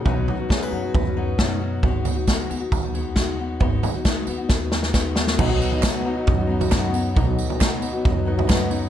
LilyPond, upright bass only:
\new Staff \with { instrumentName = "Upright bass" } { \clef bass \time 4/4 \key b \major \tempo 4 = 135 b,,8 r4 fis,8 fis,2 | gis,,8 r4 dis,8 dis,2 | gis,,8 r4 dis,8 dis,2 | b,,8 r4. fis,4 fis,4 |
b,,8 r4. fis,4 fis,4 | }